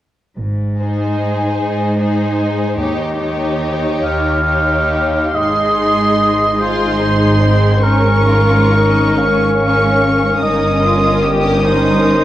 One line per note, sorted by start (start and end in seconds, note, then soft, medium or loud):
0.38 1.17 G#1 soft
0.38 1.46 G#2 soft
0.80 1.96 D#4 soft
0.80 1.96 G#4 soft
0.80 1.97 C5 soft
1.60 2.64 G#2 soft
1.99 2.76 D#4 soft
1.99 2.76 G#4 soft
1.99 2.76 C5 soft
2.77 3.88 D#2 soft
2.77 3.56 D#2 soft
2.77 3.17 D#4 soft
2.77 3.17 G4 soft
2.77 3.18 C#5 soft
3.18 4.44 D#4 soft
3.18 4.43 G4 soft
3.18 4.44 C#5 soft
4.02 5.19 D#2 medium
4.02 5.36 F5 medium
4.46 5.32 D#4 soft
4.46 5.32 G4 soft
4.46 5.33 C#5 soft
5.33 10.38 G#1 soft
5.33 10.38 G#2 soft
5.33 6.56 D#4 soft
5.33 6.56 G#4 soft
5.33 6.60 D#5 soft
5.33 6.56 C6 soft
6.59 7.80 D#4 soft
6.59 6.97 F4 soft
6.59 7.80 G#4 soft
6.59 7.85 C5 medium
6.59 7.81 C6 soft
7.00 7.41 D#4 soft
7.41 7.83 C4 soft
7.83 9.15 C#4 soft
7.83 8.26 C#4 soft
7.83 9.15 A#4 soft
7.83 9.18 A#4 medium
7.83 9.16 C#6 soft
8.27 8.73 F4 soft
8.74 9.18 D#4 soft
9.18 10.39 C#4 soft
9.18 10.42 C#4 soft
9.18 10.39 A#4 soft
9.18 10.40 F5 medium
9.18 10.40 C#6 soft
10.41 12.24 G1 soft
10.41 12.24 G2 soft
10.41 12.24 C#4 soft
10.41 10.83 D#4 soft
10.41 12.24 A#4 soft
10.41 11.35 D#5 medium
10.41 12.24 D#6 soft
10.83 11.24 F4 soft
11.23 11.63 G4 medium
11.63 12.24 D#4 medium
11.63 12.24 C5 medium